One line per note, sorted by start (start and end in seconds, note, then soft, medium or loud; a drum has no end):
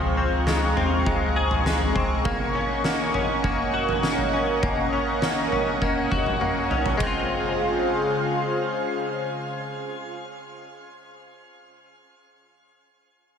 0.00 0.30 C#2 loud
0.00 2.25 F3 medium
0.00 0.46 G#3 medium
0.00 0.16 C4 medium
0.00 2.21 C4 medium
0.00 1.35 G#4 medium
0.00 2.21 F5 medium
0.00 2.23 A#5 medium
0.00 6.96 C#6 medium
0.17 0.76 C4 medium
0.32 0.74 C#2 loud
0.47 1.05 G#3 medium
0.47 snare medium
0.77 1.05 D#2 medium
0.77 1.94 C4 medium
0.77 floor tom medium
1.06 1.91 C#2 medium
1.06 1.65 G#3 medium
1.06 kick medium
1.06 floor tom medium
1.36 2.31 G#4 medium
1.51 floor tom medium
1.66 2.25 G#3 medium
1.66 snare medium
1.81 floor tom medium
1.95 2.24 C2 medium
1.95 2.31 C4 soft
1.95 kick medium
2.25 2.83 A#3 medium
2.25 6.96 C#4 medium
2.25 6.96 A#4 medium
2.25 6.96 D#5 medium
2.25 6.96 F#5 medium
2.25 kick loud
2.25 floor tom loud
2.55 3.14 C#4 medium
2.84 3.43 A#3 medium
2.84 snare medium
3.14 4.33 C#4 medium
3.14 floor tom medium
3.44 4.02 A#3 medium
3.44 kick medium
3.44 floor tom medium
3.74 6.10 F#4 medium
3.89 floor tom medium
4.03 4.62 A#3 medium
4.03 snare medium
4.18 floor tom medium
4.33 4.92 C#4 medium
4.63 5.21 A#3 medium
4.63 kick medium
4.63 floor tom loud
4.93 5.52 C#4 medium
5.22 5.81 A#3 soft
5.22 snare medium
5.52 6.70 C#4 soft
5.52 floor tom medium
5.82 6.40 A#3 medium
5.82 kick medium
6.11 7.06 F#4 medium
6.11 kick medium
6.26 floor tom medium
6.41 6.97 A#3 soft
6.41 high tom soft
6.71 7.02 C#4 soft
6.71 mid tom medium
6.86 floor tom medium
6.98 10.14 C#3 medium
6.98 10.87 G#3 medium
6.98 10.14 F4 medium
6.98 10.14 G#4 medium
6.98 10.14 C5 medium
6.98 10.14 F5 medium
6.98 kick medium
6.98 ride bell medium
7.03 10.89 C4 medium
7.07 10.91 F4 medium